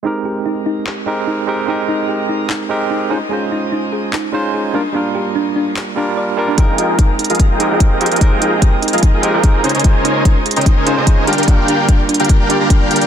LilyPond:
<<
  \new Staff \with { instrumentName = "Supersaw synth" } { \time 4/4 \key f \minor \tempo 4 = 147 r1 | r1 | r1 | r1 |
<f' aes' bes' ees'' g''>4 <f' bes'>16 r8 <f' aes' bes' ees'' f''>8 <f' aes' bes' ees'' g''>8 <f' aes' bes' ees'' g''>8. <f' aes' bes' ees'' g''>16 <f' aes' bes' ees'' g''>16 | r4 <f' aes' bes' ees'' g''>16 r8 <f' aes' bes' ees'' f''>8 <f' aes' bes' ees'' g''>8 <f' aes' bes' ees'' g''>8. <des' bes' c'' ees'' aes''>16 <des' bes' c'' ees'' aes''>16 | <des' bes' c''>4 r8. <des' bes' c'' ees'' g''>8 <des' bes' c'' ees'' aes''>8 <des' bes' c'' ees'' aes''>8. <d' g' bes' f'' g''>16 <d' g' bes' f'' g''>16 | r4 <d' bes' f''>16 r8 <d' g' bes' f'' g''>8 <d' g' bes' f'' g''>8 <d' g' bes' f'' bes''>16 <d' g' bes' f'' g''>8 <d' g' bes' f'' g''>16 <d' g' bes' f'' g''>16 | }
  \new Staff \with { instrumentName = "Synth arpeggio sound" } { \time 4/4 \key f \minor ees'16 r16 g'16 r16 ees'16 r16 ees'16 r16 g'16 r16 ees'16 r16 ees'16 r16 g'16 r16 | ees'16 r16 ees'16 r16 g'16 r16 ees'16 r16 ees'16 r16 g'16 r16 ees'16 r16 ees'16 r16 | aes'16 r16 ees'16 r16 ees'16 r16 aes'16 r16 ees'16 r16 ees'16 r16 aes'16 r16 d'16 r16 | d'16 r16 g'16 r16 d'16 r16 d'16 r16 g'16 r16 d'16 r16 d''16 r16 bes'16 d'16 |
r8 g'16 r16 ees'16 r16 ees'16 r16 g'16 r16 ees'16 r16 ees'16 r16 g'16 r16 | ees'16 r16 ees'16 r16 g'16 r16 ees'16 r16 ees'16 r16 g'16 r16 ees'16 r16 ees'16 r16 | aes'16 r16 ees'16 r16 ees'16 r16 aes'16 r16 ees'16 r16 ees'16 r16 aes'16 r16 d'16 r16 | d'16 r16 g'16 r16 d'16 r16 d'16 r16 g'16 r16 d'16 r16 d'16 r16 g'16 r16 | }
  \new Staff \with { instrumentName = "Tine electric piano" } { \time 4/4 \key f \minor <aes c' ees' g' bes'>2~ <aes c' ees' g' bes'>8 <aes c' ees' g' bes'>4 <aes c' ees' g' bes'>8 | <aes c' ees' g' bes'>2~ <aes c' ees' g' bes'>8 <aes c' ees' g' bes'>4 <aes des' ees' f' c''>8 | <aes des' ees' f' c''>2~ <aes des' ees' f' c''>8 <aes des' ees' f' c''>4 <g bes d' f' bes'>8 | <g bes d' f' bes'>2~ <g bes d' f' bes'>8 <g bes d' f' bes'>4 <g bes d' f' bes'>8 |
<aes c' ees' bes' g''>2~ <aes c' ees' bes' g''>8 <aes c' ees' g' bes'>4 <aes c' ees' g' bes'>8 | <aes c' ees' bes' g''>2~ <aes c' ees' bes' g''>8 <aes c' ees' g' bes'>4 <aes des' ees' f' c''>8 | <aes des' ees' f' c''>2~ <aes des' ees' f' c''>8 <aes des' ees' f' c''>4 <g bes d' f' bes'>8 | <g bes d' f' bes'>2~ <g bes d' f' bes'>8 <g bes d' f' d''>16 r4 r16 | }
  \new DrumStaff \with { instrumentName = "Drums" } \drummode { \time 4/4 r4 r4 hc4 r4 | r4 r4 hc4 r4 | r4 r4 hc4 r4 | r4 r4 hc4 r4 |
<hh bd>8 hh8 <hh bd>8 hh32 hh32 hh32 hh32 <hh bd>8 hh8 <hh bd>8 hh32 hh32 hh32 hh32 | <hh bd>8 hh8 <hh bd>8 hh32 hh32 hh32 hh32 <hh bd>8 hh8 <hh bd>8 hh32 hh32 hh32 hh32 | <hh bd>8 hh8 <hh bd>8 hh32 hh32 hh32 hh32 <hh bd>8 hh8 <hh bd>8 hh32 hh32 hh32 hh32 | <hh bd>8 hh8 <hh bd>8 hh32 hh32 hh32 hh32 <hh bd>8 hh8 <hh bd>8 hh32 hh32 hh16 | }
>>